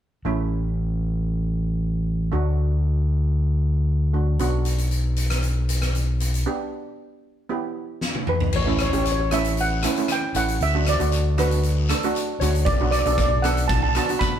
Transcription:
0.25 fingered electric bass A1, steel pan A3 C#4 E4
2.32 fingered electric bass D2, steel pan A3 D4 F#4
4.13 steel pan A3 D4 F#4
4.39 fingered electric bass B1, steel pan B3 D4 F#4, closed hi-hat
4.65 closed hi-hat
4.78 closed hi-hat
4.91 closed hi-hat
5.16 closed hi-hat
5.30 cross-stick, closed hi-hat
5.43 closed hi-hat
5.69 closed hi-hat
5.82 cross-stick, closed hi-hat
5.95 closed hi-hat
6.20 closed hi-hat
6.34 closed hi-hat
6.46 steel pan B3 D4 G4
7.49 steel pan B3 E4 G4
8.01 snare
8.15 high tom
8.27 steel pan B4, mid tom
8.40 floor tom
8.53 fingered electric bass A1, steel pan C#5, crash, long guiro
8.66 steel pan A3 C#4 E4
8.79 steel pan C#5, cross-stick, closed hi-hat
8.89 fingered electric bass A1, steel pan A3 C#4 G4 C#5, closed hi-hat
8.98 steel pan C#5
9.04 steel pan C#5, closed hi-hat, short guiro
9.12 steel pan C#5
9.20 steel pan C#5
9.31 steel pan A3 C#4 E4 E5, cross-stick, closed hi-hat
9.44 closed hi-hat
9.57 steel pan F#5, closed hi-hat, long guiro
9.82 steel pan A3 C#4 E4, cross-stick, closed hi-hat, short guiro
9.96 steel pan A3 C#4 E4, closed hi-hat
10.08 steel pan G5, cross-stick, closed hi-hat, short guiro
10.35 fingered electric bass A1, steel pan A3 C#4 E4 F#5, closed hi-hat, short guiro
10.48 closed hi-hat
10.60 fingered electric bass D2, steel pan E5, closed hi-hat, long guiro
10.75 steel pan A3 D4 F#4
10.86 steel pan D5, cross-stick, closed hi-hat
11.00 fingered electric bass D2, steel pan A3 D4 F#4, closed hi-hat
11.12 closed hi-hat, short guiro
11.38 steel pan A3 D4 F#4 B4, cross-stick, closed hi-hat
11.51 closed hi-hat
11.63 closed hi-hat, long guiro
11.89 steel pan A3 D4 A4, cross-stick, closed hi-hat, short guiro
12.03 steel pan A3 D4 F#4, closed hi-hat
12.15 closed hi-hat, short guiro
12.40 fingered electric bass D2, steel pan A3 D4 F#4 C#5, closed hi-hat, short guiro
12.55 closed hi-hat
12.65 fingered electric bass B1, steel pan D5, kick, closed hi-hat, long guiro
12.81 steel pan B3 D4 F#4
12.91 steel pan D5, cross-stick, closed hi-hat
12.99 steel pan D5
13.06 fingered electric bass B1, steel pan B3 D4 A4 D5, closed hi-hat
13.13 steel pan D5
13.18 steel pan D5, kick, closed hi-hat, short guiro
13.28 steel pan D5
13.42 steel pan B3 D4 A4 F#5, cross-stick, closed hi-hat
13.57 closed hi-hat
13.68 steel pan A5, kick, closed hi-hat, long guiro
13.75 steel pan A5
13.83 steel pan A5
13.89 steel pan A5
13.95 steel pan B3 D4 F#4 A5, cross-stick, closed hi-hat, short guiro
14.06 steel pan B3 D4 A5, closed hi-hat
14.10 steel pan F#4
14.19 steel pan B5, kick, cross-stick, closed hi-hat, short guiro

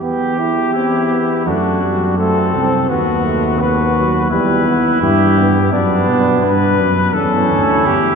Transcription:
0.01 tuba E2, trombone B3, trumpet G4
0.39 trombone E4
0.74 trombone C4, trumpet E4
1.10 trombone B3
1.46 tuba F#2, trombone A3, trumpet D4 F#4
1.82 trombone G3
2.17 trombone A3, trumpet C4 A4
2.54 tuba C2, trombone C4
2.89 tuba D#2, trombone B3, trumpet B3 F#4
3.25 trombone A3
3.60 trombone B3, trumpet F#4 B4
3.96 trombone F#3
4.30 tuba E2, trombone G3, trumpet E4 B4
4.67 trombone B3
5.02 tuba G2, trombone E4, trumpet G4
5.38 trombone B3
5.72 tuba F#2, trombone B3, trumpet D4 D5
6.08 tuba B2
6.42 tuba G2, trumpet B4
6.79 tuba F#2
7.14 tuba E2, trombone C#4, trumpet E4 A4
7.50 tuba D2
7.86 tuba E2, trumpet G4

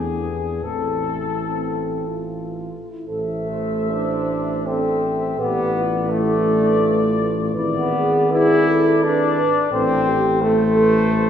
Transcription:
Already playing: tuba E2, trombone E3, euphonium B3, french horn section D4, trumpet section G#4
0.62 tuba A1, trombone E3, euphonium A3, french horn section C4, trumpet section A4
1.46 french horn section C4
2.07 french horn section F4
2.89 french horn section E4
3.07 tuba A1, french horn section A4, euphonium C5, trumpet section E5
3.28 trombone A3
3.49 french horn section C5
3.90 trombone D4
4.66 trombone C4, french horn section A4, euphonium C5, trumpet section E5
5.39 tuba A1, trombone B3, french horn section G4, euphonium B4, trumpet section D5
5.74 french horn section F4
6.09 trombone A3, french horn section E4, euphonium B4, trumpet section D5
6.45 french horn section D4
6.81 french horn section F4
7.54 tuba G#1, french horn section E4, euphonium B4, trumpet section D5
7.73 trombone B3
7.92 french horn section G#4
8.31 trombone E4, french horn section G#4, euphonium B4, trumpet section D5
8.68 french horn section A4
9.03 trombone D4, french horn section B4, euphonium B4, trumpet section D5
9.72 tuba A1, trombone C4, euphonium A4, trumpet section C5, french horn section C5
10.07 french horn section G4
10.41 trombone A3, french horn section A4, euphonium A4, trumpet section C5
10.76 french horn section B4
11.12 french horn section C5

